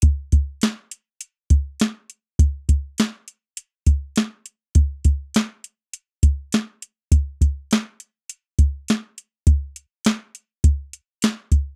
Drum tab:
HH |xxxxxxxx|xxxxxxxx|xxxxxxxx|xxxxxxxx|
SD |--o---o-|--o---o-|--o---o-|--o---o-|
BD |oo---o--|oo---o--|oo---o--|oo---o--|

HH |xxxxxxxx|
SD |--o---o-|
BD |o---o--o|